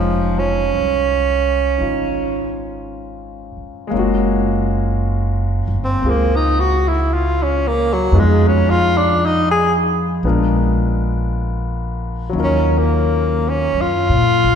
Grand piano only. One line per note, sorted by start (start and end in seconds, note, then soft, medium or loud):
0.00 3.86 G#3 soft
0.00 3.94 C4 soft
0.00 1.76 C#4 soft
0.00 1.79 D#4 soft
0.00 1.79 F4 soft
0.00 3.91 C5 soft
1.78 3.91 C#4 soft
1.78 3.92 D#4 soft
1.78 3.93 F4 soft
3.87 8.10 G#3 medium
3.87 8.14 A#3 medium
3.93 8.15 C#4 soft
3.93 6.03 F4 soft
3.99 8.18 F#4 medium
6.02 8.14 C4 soft
6.02 8.14 F4 soft
6.06 8.15 G#4 soft
8.12 10.23 G#3 soft
8.12 10.23 B3 soft
8.12 10.25 D#4 soft
8.12 10.24 F4 soft
8.16 10.26 G#4 soft
10.24 12.35 G#3 soft
10.24 12.35 B3 soft
10.24 12.35 D4 soft
10.24 12.35 F4 soft
10.24 12.36 A#4 soft
12.30 14.55 F#3 medium
12.30 14.55 C#4 soft
12.35 14.55 D#4 soft
12.35 14.55 F4 soft
12.40 14.55 A#4 medium